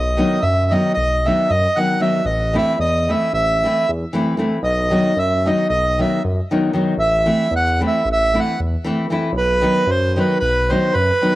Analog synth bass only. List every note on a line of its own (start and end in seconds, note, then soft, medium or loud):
0.00 0.21 B1 loud
0.43 0.75 F#2 medium
0.97 1.30 B1 medium
1.50 1.67 F#2 medium
2.25 2.57 A1 loud
2.79 3.12 E2 medium
3.33 3.66 A1 medium
3.89 4.05 E2 medium
4.63 4.95 B1 loud
5.16 5.49 F#2 medium
5.70 6.03 B1 medium
6.24 6.41 F#2 medium
6.97 7.30 A1 loud
7.51 7.84 E2 medium
8.05 8.38 A1 medium
8.60 8.76 E2 medium
9.33 9.65 B1 loud
9.87 10.19 F#2 medium
10.42 10.74 B1 medium
10.95 11.11 F#2 medium